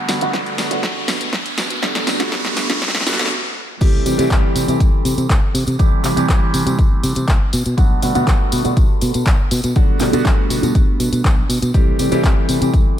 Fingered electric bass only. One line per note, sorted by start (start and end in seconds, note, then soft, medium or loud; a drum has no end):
0.09 0.18 B2 medium
0.22 0.30 B2 medium
0.58 0.67 B2 loud
0.71 0.79 B2 loud
1.08 1.16 B2 loud
1.21 1.29 B2 loud
1.57 1.66 B2 loud
1.70 1.78 B2 loud
2.07 2.16 B2 medium
2.20 2.28 B2 medium
2.56 2.65 B2 medium
2.69 2.78 B2 loud
3.06 3.15 B2 loud
3.19 3.27 B2 loud
3.81 3.98 C2 loud
4.06 4.14 C3 medium
4.19 4.27 C3 medium
4.31 4.39 C2 loud
4.55 4.64 C3 medium
4.68 4.76 C3 loud
4.80 4.89 C2 medium
4.93 muted fingered electric bass stroke soft
5.05 5.13 C3 loud
5.18 5.26 C3 loud
5.30 5.38 C2 medium
5.54 5.63 C3 loud
5.67 5.75 C3 loud
5.80 5.91 C2 loud
5.92 muted fingered electric bass stroke soft
6.04 6.12 C3 medium
6.17 6.25 C3 medium
6.29 6.37 C2 loud
6.54 6.62 C3 medium
6.66 6.74 C3 loud
6.79 6.87 C2 medium
6.92 muted fingered electric bass stroke soft
7.03 7.12 C3 loud
7.16 7.24 C3 loud
7.28 7.37 C2 medium
7.53 7.62 B2 loud
7.66 7.74 B2 loud
7.78 7.94 B1 loud
8.03 8.11 B2 medium
8.16 8.23 B2 medium
8.27 8.36 B1 loud
8.52 8.61 B2 medium
8.65 8.73 B2 loud
8.77 8.85 B1 loud
8.90 muted fingered electric bass stroke soft
9.02 9.10 B2 loud
9.15 9.23 B2 loud
9.26 9.35 B1 medium
9.52 9.60 B2 loud
9.64 9.72 B2 loud
9.76 9.88 B1 loud
9.89 muted fingered electric bass stroke soft
10.00 10.09 B2 medium
10.13 10.21 B2 medium
10.26 10.34 B1 loud
10.50 10.59 B2 medium
10.63 10.71 B2 loud
10.75 10.84 B1 loud
11.00 11.08 B2 loud
11.12 11.21 B2 loud
11.25 11.41 B1 medium
11.49 11.58 B2 medium
11.62 11.70 B2 medium
11.74 11.91 C2 loud
11.99 12.08 C3 medium
12.12 12.20 C3 medium
12.24 12.32 C2 loud
12.49 12.57 C3 loud
12.62 12.69 C3 loud
12.73 12.82 C2 loud
12.86 muted fingered electric bass stroke soft